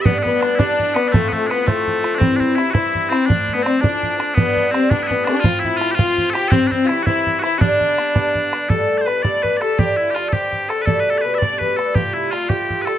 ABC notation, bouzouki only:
X:1
M:6/8
L:1/8
Q:3/8=111
K:Gmix
V:1 name="Bouzouki"
[A,,G,B,D]2 [A,,G,B,D] [A,,G,B,D]2 [G,B,D] | [A,,F,CF]2 [A,,F,CF] [A,,F,CF]2 [F,CF] | [G,,E,CE]2 [G,,E,CE] [G,,E,CE]2 [E,CE] | [A,,F,A,D]2 [A,,F,A,D] [A,,F,A,D]2 [F,A,D] |
[A,,G,B,D]2 [A,,G,B,D] [A,,G,B,D]2 [G,B,D] | [A,,F,CF]2 [A,,F,CF] [A,,F,CF]2 [F,CF] | [G,,E,CE]2 [G,,E,CE] [G,,E,CE]2 [E,CE] | [G,,D,B,D]2 [G,,D,B,D] [G,,D,B,D]2 [D,B,D] |
[A,,G,B,D]2 [A,,G,B,D] [A,,G,B,D]2 [G,B,D] | [G,,D,CD]2 [G,,D,CD] [G,,D,CD]2 [D,CD] | [B,,G,A,D]2 [B,,G,A,D] [B,,G,A,D]2 [G,A,D] | [C,G,A,F]2 [C,G,A,F] [C,G,A,F]2 [G,A,F] |]